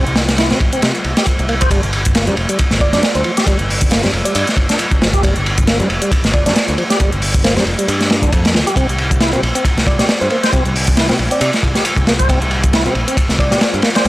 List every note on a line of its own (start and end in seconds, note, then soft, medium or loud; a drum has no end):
0.07 0.52 C2 medium
0.07 closed hi-hat soft
0.16 snare loud
0.16 ride medium
0.29 snare medium
0.29 closed hi-hat medium
0.29 ride medium
0.38 0.49 E4 medium
0.38 snare loud
0.38 closed hi-hat medium
0.38 ride medium
0.51 0.57 C3 medium
0.51 0.59 C4 loud
0.51 snare medium
0.51 closed hi-hat soft
0.60 0.69 A#1 loud
0.60 kick loud
0.60 ride medium
0.73 0.82 C4 loud
0.73 closed hi-hat medium
0.82 0.91 C3 loud
0.82 snare loud
0.82 closed hi-hat medium
0.82 ride medium
0.95 closed hi-hat soft
1.04 1.13 C2 medium
1.04 ride medium
1.17 1.26 G4 medium
1.17 snare loud
1.17 closed hi-hat medium
1.17 ride medium
1.26 kick loud
1.26 closed hi-hat medium
1.26 ride medium
1.39 1.66 C2 medium
1.39 closed hi-hat soft
1.49 1.55 A#3 loud
1.49 ride medium
1.61 1.70 C5 loud
1.61 kick loud
1.61 closed hi-hat medium
1.61 ride medium
1.71 1.79 G1 medium
1.71 1.81 G3 medium
1.71 kick loud
1.71 closed hi-hat medium
1.71 ride medium
1.83 2.29 G1 medium
1.83 closed hi-hat soft
1.93 ride medium
2.05 kick medium
2.05 closed hi-hat medium
2.15 2.25 A#3 medium
2.15 snare loud
2.15 closed hi-hat medium
2.15 ride medium
2.27 2.34 G2 medium
2.27 2.35 G3 loud
2.27 closed hi-hat soft
2.37 2.45 F1 medium
2.37 ride medium
2.49 2.58 G3 loud
2.49 closed hi-hat medium
2.49 ride soft
2.59 muted picked electric bass stroke soft
2.59 kick loud
2.59 closed hi-hat medium
2.59 ride medium
2.71 2.94 G1 medium
2.71 snare medium
2.71 closed hi-hat soft
2.80 2.91 D5 medium
2.80 kick medium
2.80 ride medium
2.93 3.00 G2 medium
2.93 3.03 D4 medium
2.93 3.00 D5 medium
2.93 snare soft
2.93 closed hi-hat medium
3.03 3.11 D5 medium
3.03 snare loud
3.03 closed hi-hat medium
3.03 ride medium
3.15 3.22 D2 medium
3.15 3.22 C5 medium
3.15 closed hi-hat soft
3.24 3.31 F3 loud
3.24 3.33 C5 medium
3.24 ride medium
3.37 3.46 G4 loud
3.37 snare medium
3.37 closed hi-hat medium
3.47 3.55 G1 loud
3.47 3.58 G3 medium
3.47 kick loud
3.47 closed hi-hat medium
3.47 ride medium
3.59 4.05 G1 medium
3.59 closed hi-hat soft
3.70 open hi-hat medium
3.81 kick loud
3.81 closed hi-hat medium
3.91 4.02 A#3 medium
3.91 snare loud
3.91 closed hi-hat medium
3.91 ride medium
4.03 4.10 G2 medium
4.03 4.12 G3 loud
4.03 snare medium
4.03 closed hi-hat soft
4.13 4.21 F1 loud
4.13 ride medium
4.25 4.35 G3 loud
4.25 4.31 D5 medium
4.25 closed hi-hat medium
4.35 4.44 G2 loud
4.35 4.43 D5 medium
4.35 closed hi-hat medium
4.35 ride medium
4.47 snare soft
4.47 closed hi-hat soft
4.57 4.65 G1 medium
4.57 kick medium
4.57 ride medium
4.69 4.79 D4 medium
4.69 snare medium
4.69 closed hi-hat medium
4.79 closed hi-hat medium
4.79 ride medium
4.91 5.18 G1 medium
4.91 kick loud
4.91 closed hi-hat soft
5.01 5.08 F3 loud
5.01 snare loud
5.01 ride medium
5.13 5.23 G4 loud
5.13 kick loud
5.13 closed hi-hat medium
5.23 5.32 G1 loud
5.23 5.34 G3 loud
5.23 kick loud
5.23 closed hi-hat medium
5.23 ride medium
5.36 5.81 G1 medium
5.36 closed hi-hat soft
5.46 ride medium
5.58 kick loud
5.58 closed hi-hat medium
5.67 5.78 A#3 medium
5.67 snare loud
5.67 closed hi-hat medium
5.67 ride medium
5.80 5.86 G2 medium
5.80 5.88 G3 loud
5.80 closed hi-hat soft
5.90 5.98 F1 medium
5.90 ride medium
6.01 6.11 G3 loud
6.01 closed hi-hat medium
6.01 ride soft
6.12 muted picked electric bass stroke soft
6.12 kick loud
6.12 closed hi-hat medium
6.12 ride medium
6.24 6.48 G1 medium
6.24 snare medium
6.24 closed hi-hat soft
6.33 6.44 D5 medium
6.33 kick loud
6.33 ride medium
6.46 6.53 G2 medium
6.46 6.55 D4 medium
6.46 6.52 D5 medium
6.46 snare medium
6.46 closed hi-hat medium
6.55 6.64 D5 medium
6.55 snare loud
6.55 closed hi-hat medium
6.55 ride medium
6.68 6.75 D2 medium
6.68 closed hi-hat soft
6.78 6.84 F3 loud
6.78 ride medium
6.90 6.99 G4 loud
6.90 6.99 D5 medium
6.90 snare medium
6.90 closed hi-hat medium
7.00 7.08 G1 loud
7.00 7.11 G3 loud
7.00 kick loud
7.00 closed hi-hat medium
7.00 ride medium
7.12 7.58 G1 medium
7.12 closed hi-hat soft
7.22 open hi-hat medium
7.34 kick medium
7.34 closed hi-hat medium
7.44 7.55 A#3 medium
7.44 7.52 C5 medium
7.44 snare loud
7.44 closed hi-hat medium
7.44 ride medium
7.56 7.63 G2 medium
7.56 7.65 G3 loud
7.56 7.63 C5 medium
7.56 snare medium
7.56 closed hi-hat soft
7.66 7.74 F1 medium
7.66 ride medium
7.78 7.88 G3 loud
7.78 closed hi-hat medium
7.88 8.24 G2 loud
7.88 closed hi-hat medium
7.88 ride medium
8.01 snare soft
8.01 closed hi-hat soft
8.10 snare loud
8.10 ride medium
8.22 8.29 E2 medium
8.22 8.32 D4 medium
8.22 kick medium
8.22 closed hi-hat medium
8.32 8.54 F2 medium
8.32 kick loud
8.32 closed hi-hat soft
8.32 ride medium
8.45 snare loud
8.45 closed hi-hat soft
8.45 ride medium
8.54 8.63 D2 medium
8.54 8.61 F3 loud
8.54 snare loud
8.54 ride medium
8.67 8.75 G4 loud
8.67 closed hi-hat medium
8.76 8.84 C2 loud
8.76 8.87 C4 loud
8.76 kick loud
8.76 closed hi-hat soft
8.76 ride medium
8.89 9.35 C2 medium
8.89 closed hi-hat soft
8.98 ride medium
9.11 kick loud
9.11 closed hi-hat medium
9.20 9.31 E4 medium
9.20 snare loud
9.20 closed hi-hat soft
9.20 ride medium
9.33 9.39 C3 medium
9.33 9.41 C4 loud
9.33 closed hi-hat soft
9.43 9.51 A#1 loud
9.43 ride medium
9.55 9.64 C4 loud
9.55 closed hi-hat medium
9.55 ride soft
9.65 muted picked electric bass stroke soft
9.65 kick loud
9.65 closed hi-hat medium
9.65 ride medium
9.77 10.01 C2 medium
9.77 snare medium
9.77 closed hi-hat soft
9.87 9.97 D5 medium
9.87 kick loud
9.87 ride medium
9.99 10.06 C3 medium
9.99 10.08 G4 medium
9.99 10.05 D5 medium
9.99 snare medium
9.99 closed hi-hat medium
10.09 10.17 D5 medium
10.09 snare loud
10.09 closed hi-hat soft
10.09 ride loud
10.21 10.28 G2 medium
10.21 10.27 C5 medium
10.21 closed hi-hat soft
10.30 10.37 A#3 loud
10.30 10.39 C5 medium
10.30 ride medium
10.43 10.52 C5 loud
10.43 snare medium
10.43 closed hi-hat medium
10.53 10.61 C2 medium
10.53 10.64 C4 loud
10.53 kick loud
10.53 closed hi-hat medium
10.53 ride medium
10.65 11.11 C2 medium
10.65 closed hi-hat soft
10.76 open hi-hat medium
10.87 kick medium
10.87 closed hi-hat medium
10.97 11.08 E4 medium
10.97 snare loud
10.97 closed hi-hat soft
10.97 ride medium
11.09 11.16 C3 medium
11.09 11.18 C4 loud
11.09 snare medium
11.09 closed hi-hat soft
11.19 11.27 A#1 medium
11.19 ride medium
11.31 11.40 C4 loud
11.31 11.38 D5 medium
11.31 closed hi-hat medium
11.41 11.49 C3 loud
11.41 11.49 D5 medium
11.41 closed hi-hat medium
11.41 ride medium
11.53 snare soft
11.53 closed hi-hat soft
11.63 11.71 C2 medium
11.63 kick medium
11.63 ride medium
11.75 11.85 G4 medium
11.75 snare medium
11.75 closed hi-hat medium
11.85 closed hi-hat medium
11.85 ride loud
11.96 12.24 C2 medium
11.96 kick loud
11.96 closed hi-hat soft
12.07 12.13 A#3 loud
12.07 snare loud
12.07 ride medium
12.19 12.28 C5 loud
12.19 kick medium
12.19 closed hi-hat medium
12.29 12.37 C2 loud
12.29 12.40 C4 loud
12.29 kick loud
12.29 closed hi-hat medium
12.29 ride medium
12.41 12.87 C2 medium
12.41 closed hi-hat soft
12.51 ride medium
12.64 kick medium
12.64 closed hi-hat medium
12.73 12.84 E4 medium
12.73 snare loud
12.73 closed hi-hat medium
12.73 ride medium
12.86 12.92 C3 medium
12.86 12.94 C4 loud
12.86 closed hi-hat soft
12.95 13.04 A#1 loud
12.95 ride medium
13.07 13.17 C4 loud
13.07 closed hi-hat medium
13.07 ride soft
13.17 muted picked electric bass stroke soft
13.17 kick loud
13.17 closed hi-hat medium
13.17 ride medium
13.29 13.53 C2 medium
13.29 snare soft
13.29 closed hi-hat soft
13.39 13.50 D5 medium
13.39 kick loud
13.39 ride medium
13.51 13.58 C3 medium
13.51 13.61 G4 medium
13.51 13.58 D5 loud
13.51 snare soft
13.51 closed hi-hat medium
13.61 13.70 D5 medium
13.61 snare loud
13.61 closed hi-hat medium
13.61 ride medium
13.74 13.80 G2 medium
13.74 closed hi-hat soft
13.82 13.90 A#3 loud
13.82 snare loud
13.82 ride medium
13.95 14.05 C5 loud
13.95 14.05 D5 loud
13.95 snare loud
13.95 closed hi-hat medium
13.95 ride medium
14.05 14.08 C2 loud
14.05 closed hi-hat medium
14.05 ride medium